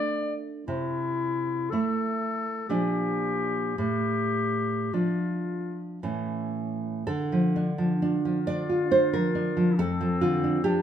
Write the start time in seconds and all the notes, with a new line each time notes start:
Already playing: A3 D4 D5
0.67 C3 E4
1.70 A3 E4 A4
2.69 A#2 F3 D4 G4
3.77 A2 G4
4.93 F3 D4 F4
6.03 A2 E3 C#4
7.07 D3 A4
7.32 F3
7.56 D4
7.78 F3
8.01 D4 F4
8.25 F3
8.47 D4 D5
8.69 F4
8.91 D4 C5
9.13 F3 A#4
9.35 D4
9.57 F3
9.78 F2 C4 A4
10.01 F3
10.21 D3 F4
10.44 D4
10.64 F3 D4 G4